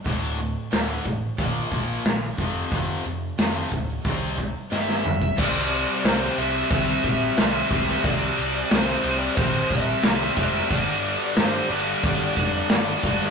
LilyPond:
<<
  \new Staff \with { instrumentName = "Lead electric guitar" } { \time 4/4 \key c \mixolydian \tempo 4 = 90 r1 | r2. e''4 | d''4 c''8 e''4. e''4 | d''4 c''8. d''16 c''8 e''8 e''4 |
d''4 c''8 d''4. d''4 | }
  \new Staff \with { instrumentName = "Distorted electric guitar" } { \clef bass \time 4/4 \key c \mixolydian r1 | r1 | <c g c'>2.~ <c g c'>8 <c g c'>8 | <c g c'>2.~ <c g c'>8 <c g c'>8 |
<g, d g>2.~ <g, d g>8 <g, d g>8 | }
  \new Staff \with { instrumentName = "Distorted electric guitar" } { \clef bass \time 4/4 \key c \mixolydian <d, a, d>8 <d, a,>8 <d, a, d>8 <d, a,>8 <bes, f bes>8 <bes, f bes>8 <bes, f>8 <f, c f>8 | <f, c f>8 <f, c>8 <f, c f>8 <f, c>8 <c g c'>8 <c g>8 <c g c'>8 <c g>8 | <c g c'>4 <c g c'>8 <c g c'>8 <c g c'>4 <c g c'>8 <c g c'>8 | <c g c'>4 <c g c'>8 <c g c'>8 <c g c'>4 <c g c'>8 <c g c'>8 |
<g, d g>4 <g, d g>8 <g, d g>8 <g, d g>4 <g, d g>8 <g, d g>8 | }
  \new Staff \with { instrumentName = "Overdriven electric guitar" } { \clef bass \time 4/4 \key c \mixolydian <d, a, d>8 <d, a,>8 <d, a, d>8 <d, a,>8 <bes, f bes>8 <bes, f bes>8 <bes, f>8 <f, c f>8 | <f, c f>8 <f, c>8 <f, c f>8 <f, c>8 <c g c'>8 <c g>8 <c g c'>8 <c g>8 | <c g c'>4 <c g c'>8 <c g c'>8 <c g c'>4 <c g c'>8 <c g c'>8 | <c g c'>4 <c g c'>8 <c g c'>8 <c g c'>4 <c g c'>8 <c g c'>8 |
<g, d g>4 <g, d g>8 <g, d g>8 <g, d g>4 <g, d g>8 <g, d g>8 | }
  \new Staff \with { instrumentName = "Picked electric bass" } { \clef bass \time 4/4 \key c \mixolydian d,,4 d,,8 a,,8 bes,,8 bes,,8 bes,,8 f,,8 | f,,8 f,,8 f,,8 d,,8 c,4 g,,4 | c,4 c,8 c,8 c,8 bes,,8 c,8 c,8 | c,8 c,8 c,8 c,8 bes,,8 bes,,8 c,8 f,,8 |
g,,4 g,,8 g,,8 g,,8 f,8 g,,8 g,8 | }
  \new DrumStaff \with { instrumentName = "Drums" } \drummode { \time 4/4 <hho bd>4 <hho sn>8 bd8 <hho bd>8 bd8 <hho sn>8 bd8 | <hho bd>4 <hho sn>8 bd8 <hho bd>8 bd8 sn16 sn16 toml16 bd16 | <cymc bd>8 cymc8 <cymc sn>16 sn16 cymc8 <cymc bd>8 <cymc bd>8 <cymc sn>8 <cymc bd>16 sn16 | <cymc bd>8 cymc8 <cymc sn>16 sn16 cymc8 <cymc bd>8 <cymc bd>8 <cymc sn>8 <cymc bd>16 sn16 |
<cymc bd>8 cymc8 <cymc sn>8 cymc8 <cymc bd>8 <cymc bd>8 <cymc sn>8 <cymc bd>16 sn16 | }
>>